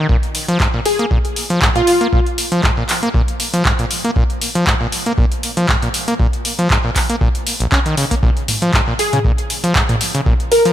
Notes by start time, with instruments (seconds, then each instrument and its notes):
0.09 acid bass A#2, kick
0.23 closed hi-hat
0.35 open hi-hat
0.48 acid bass F3, closed hi-hat
0.60 acid bass G#2, kick, clap
0.74 acid bass A#2
0.86 digital synth lead G#4, open hi-hat
0.99 acid bass A#3, closed hi-hat
1.11 acid bass A#2, kick
1.25 closed hi-hat
1.36 open hi-hat
1.50 acid bass F3, closed hi-hat
1.62 acid bass G#2, kick, clap
1.76 acid bass A#2, digital synth lead F4, closed hi-hat
1.87 open hi-hat
2.01 acid bass A#3, closed hi-hat
2.13 acid bass A#2, kick
2.26 closed hi-hat
2.38 open hi-hat
2.52 acid bass F3, closed hi-hat
2.63 acid bass G#2, kick, clap
2.77 acid bass A#2
2.89 clap, open hi-hat
3.03 acid bass A#3, closed hi-hat
3.14 acid bass A#2, kick
3.28 closed hi-hat
3.40 open hi-hat
3.54 acid bass F3, closed hi-hat
3.65 acid bass G#2, kick, clap
3.79 acid bass A#2, closed hi-hat
3.91 open hi-hat
4.04 acid bass A#3, closed hi-hat
4.16 acid bass A#2, kick
4.30 closed hi-hat
4.42 open hi-hat
4.55 acid bass F3, closed hi-hat
4.67 acid bass G#2, kick, clap
4.81 acid bass A#2
4.92 open hi-hat
5.06 acid bass A#3, closed hi-hat
5.18 acid bass A#2, kick
5.32 closed hi-hat
5.43 open hi-hat
5.57 acid bass F3, closed hi-hat
5.69 acid bass G#2, kick, clap
5.82 acid bass A#2, closed hi-hat
5.94 open hi-hat
6.08 acid bass A#3, closed hi-hat
6.20 acid bass A#2, kick
6.33 closed hi-hat
6.45 open hi-hat
6.59 acid bass F3, closed hi-hat
6.70 acid bass G#2, kick, clap
6.84 acid bass A#2
6.96 kick, clap, open hi-hat
7.10 acid bass A#3, closed hi-hat
7.21 acid bass A#2, kick
7.35 closed hi-hat
7.47 open hi-hat
7.60 acid bass A#1, closed hi-hat
7.72 acid bass C#4, kick, clap
7.86 acid bass D#3, closed hi-hat
7.97 acid bass C#3, open hi-hat
8.11 acid bass A#3, kick, closed hi-hat
8.23 acid bass A#2, kick
8.37 closed hi-hat
8.48 mid tom, open hi-hat
8.62 acid bass F3, closed hi-hat
8.74 acid bass G#2, kick, clap
8.88 acid bass A#2
8.99 digital synth lead G#4, open hi-hat
9.13 acid bass C#3, closed hi-hat, mid tom
9.25 acid bass A#2, kick
9.38 closed hi-hat
9.50 open hi-hat
9.64 acid bass F3, closed hi-hat
9.75 acid bass G#2, kick, clap
9.89 acid bass A#2, closed hi-hat, mid tom
10.01 open hi-hat
10.15 acid bass C#3, closed hi-hat
10.26 acid bass A#2, kick
10.40 closed hi-hat
10.52 digital synth lead A#4, open hi-hat
10.65 acid bass F3, closed hi-hat